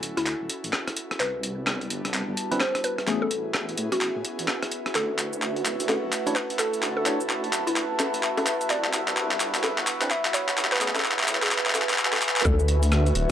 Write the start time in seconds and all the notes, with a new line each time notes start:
Already playing: C#4 E4 F#4 A4 B4 E5 G#5
0.03 D1, closed hi-hat
0.17 D2 E4, cross-stick, closed hi-hat
0.26 clap, closed hi-hat
0.41 D1
0.50 closed hi-hat
0.64 A1, closed hi-hat
0.73 cross-stick, clap
0.88 cross-stick, closed hi-hat
0.97 closed hi-hat
1.11 cross-stick, closed hi-hat
1.20 C2 G3 B3 D4 B4, clap, closed hi-hat
1.34 B4
1.43 closed hi-hat
1.67 A5, cross-stick, clap
1.81 closed hi-hat
1.90 G1, closed hi-hat
2.05 C2 E5, cross-stick, closed hi-hat
2.14 clap, closed hi-hat
2.28 G1
2.37 closed hi-hat
2.51 G1 C4 D4 E4 B4, closed hi-hat
2.60 C5, cross-stick, clap
2.75 cross-stick, closed hi-hat
2.84 B4, closed hi-hat
2.98 cross-stick, closed hi-hat
3.07 A1 A3 B3 C#4 E4 G#4, clap, closed hi-hat
3.22 A4
3.31 closed hi-hat
3.54 cross-stick, clap
3.69 closed hi-hat
3.78 A2, closed hi-hat
3.92 A1 F#4 G#5, cross-stick, closed hi-hat
4.01 clap, closed hi-hat
4.16 A2
4.25 closed hi-hat
4.39 E2, closed hi-hat
4.48 cross-stick, clap
4.63 cross-stick, closed hi-hat
4.72 closed hi-hat
4.86 cross-stick, closed hi-hat
4.95 D2 A3 F#4 A4, clap, closed hi-hat, cabasa
5.19 clap, closed hi-hat, cabasa
5.33 cabasa
5.42 clap, cabasa
5.53 A5, closed hi-hat
5.65 D1, clap, closed hi-hat, cabasa
5.80 D2, closed hi-hat, cabasa
5.89 clap, closed hi-hat, high bongo, cabasa
6.03 D1
6.12 clap, closed hi-hat, cabasa
6.26 A1 D4 E4 F#4 C#5, closed hi-hat, cabasa
6.35 B4, clap, cabasa
6.50 closed hi-hat
6.59 A4, clap, closed hi-hat, cabasa
6.74 closed hi-hat, cabasa
6.82 D2, clap, closed hi-hat, cabasa
6.97 A4
7.06 D4 E4 F#4 C#5, clap, closed hi-hat, cabasa
7.20 cabasa
7.29 clap, cabasa
7.44 closed hi-hat
7.52 D1, clap, closed hi-hat, cabasa
7.67 D2 E4, closed hi-hat, cabasa
7.76 clap, closed hi-hat, cabasa
7.90 D1
8.00 clap, closed hi-hat, high bongo, cabasa
8.14 A1, closed hi-hat, cabasa
8.23 clap, cabasa
8.37 closed hi-hat, high bongo
8.46 clap, closed hi-hat, cabasa
8.61 closed hi-hat, cabasa
8.70 C2 G3 B3 D4 D5, clap, closed hi-hat, cabasa
8.84 clap
8.93 clap, closed hi-hat, cabasa
9.08 clap, cabasa
9.17 clap, cabasa
9.31 clap, closed hi-hat
9.40 G1, clap, closed hi-hat, cabasa
9.54 C2, clap, closed hi-hat, cabasa
9.64 clap, closed hi-hat, high bongo, cabasa
9.78 G1, clap
9.87 clap, closed hi-hat, cabasa
10.01 G1 C4 D4 E4 B4, clap, closed hi-hat, cabasa
10.10 E5, clap, cabasa
10.25 clap, closed hi-hat
10.34 C#5, clap, closed hi-hat, cabasa
10.49 clap, closed hi-hat, cabasa
10.57 A1 B3 C#4 G#4, clap, closed hi-hat, cabasa
10.65 clap
10.72 B4, clap
10.76 clap
10.81 A3 B3 C#4 G#4, clap, closed hi-hat, cabasa
10.88 clap
10.95 clap, high bongo, cabasa
11.00 clap
11.04 clap, cabasa
11.11 clap
11.19 clap, closed hi-hat
11.23 clap
11.27 A2, clap, closed hi-hat, cabasa
11.35 clap
11.42 A1 G#4 G#5, clap, closed hi-hat, cabasa
11.47 clap
11.51 clap, closed hi-hat, cabasa
11.58 clap
11.65 A2, clap
11.70 clap
11.74 A1, clap, closed hi-hat, high bongo, cabasa
11.82 clap
11.89 E1, clap, closed hi-hat, cabasa
11.94 clap
11.98 clap, cabasa
12.05 clap
12.13 clap, closed hi-hat, high bongo
12.17 clap
12.22 clap, closed hi-hat, cabasa
12.29 clap
12.36 clap, closed hi-hat, cabasa
12.40 clap
12.45 D2 A3 E4 F#4 A4 C#5, kick, cabasa
12.59 cabasa
12.68 A5, closed hi-hat
12.83 closed hi-hat, cabasa
12.92 cross-stick, cabasa
13.06 closed hi-hat, cabasa
13.15 D1, closed hi-hat